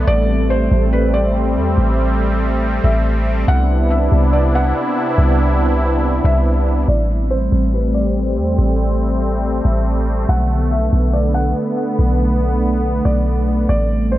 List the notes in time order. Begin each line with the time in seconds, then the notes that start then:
Already playing: A3
0.07 A1 G3 C4 D5
0.50 C5
0.71 A1
0.93 B4
1.14 D5
1.56 E2
1.78 A1
2.84 A1 E5
3.48 C2 C3 B3 D4 E4 F#5
3.91 E5
4.12 C2
4.33 D5
4.55 F#5
5.18 C2
6.24 C2 E5
6.88 A1 G3 A3 C4 D5
7.31 C5
7.52 A1
7.74 B4
7.94 D5
8.37 E2
8.59 A1
9.65 A1 E5
10.29 B1 D3 B3 F#5
10.71 E5
10.93 B1
11.13 D5
11.34 F#5
11.99 B1
13.05 B1 D5
13.69 A1 G3 C4 D5
14.12 C5